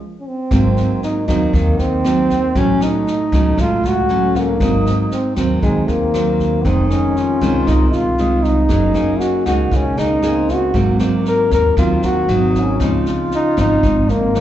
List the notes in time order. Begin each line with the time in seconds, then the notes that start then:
0.20 C#4
0.27 C4
0.51 G#1 G#2 F#3 A#3 C4, kick, cross-stick, snare
0.77 snare
1.02 A#3 D#4, snare
1.28 D#2 F#3 A#3 C4 D#4, kick, cross-stick, snare
1.53 D#2 D#3 A#3, kick, snare
1.79 D#2 C4, snare
2.04 F#3 A#3 C4, cross-stick, snare
2.30 kick, snare
2.55 A1 A2 F#3 A3 C#4, kick, snare
2.81 D#4, cross-stick, snare
3.07 snare
3.32 C#2 F#3 A3 C#4, kick, snare
3.57 C#2 A2 F4, kick, cross-stick, snare
3.83 C#2 F#4, snare
4.09 F#3 A3 C#4, snare
4.35 A#3, kick, snare
4.54 D4
4.60 G#1 G#2 F#3 A#3 C4 D#4, kick, cross-stick, snare
4.86 snare
5.11 C4, snare
5.36 D#2 F#3 A#3 C4, kick, cross-stick, snare
5.63 D#2 D#3 G#3 C4, kick, snare
5.88 D#2 A#3, snare
6.14 F#3 A#3 C4, cross-stick, snare
6.39 kick, snare
6.64 F1 F2 D#3 G#3 C4 D#4, kick, snare
6.89 C#4, cross-stick, snare
7.16 F4, snare
7.41 C2 D#3 G#3 C4, kick, snare
7.67 C2 C3 D#4, kick, cross-stick, snare
7.93 C2 F4, snare
8.18 D#3 G#3 C4 D#4, snare
8.43 D#4, kick, snare
8.69 F#1 F#3 A#3 C#4 D#4 G#4, kick, cross-stick, snare
8.94 A#3 D#4 G#4, snare
9.20 F#4, snare
9.46 C#2 A#3 D#4 F#4 G#4, kick, cross-stick, snare
9.71 C#2 C#3 C#4, kick, snare
9.97 C#2 A#3 D#4 G#4, snare
10.22 A#3 C4 D#4 G#4, cross-stick, snare
10.48 kick, snare
10.53 F#4
10.74 G#1 G#2 F#3 A#3 C4, kick, snare
10.99 F#3 A#3 C4, cross-stick, snare
11.25 A#4, snare
11.51 D#2 A#4, kick, snare
11.77 D#2 D#3 F#3 A#3 C4 F4, kick, cross-stick, snare
12.02 D#2 F#4, snare
12.28 G#1 F#3 A#3 C4 D#4, snare
12.54 kick, snare
12.59 C#4
12.80 C#2 C#3 F3 C4 D#4 F4, kick, cross-stick, snare
13.06 snare
13.31 snare
13.35 D#4
13.57 G#1 F3 C4 D#4, kick, cross-stick, snare
13.61 D#4
13.83 G#1 G#2, kick, snare
14.09 G#1 A#3, snare
14.35 F3 C4 D#4, cross-stick, snare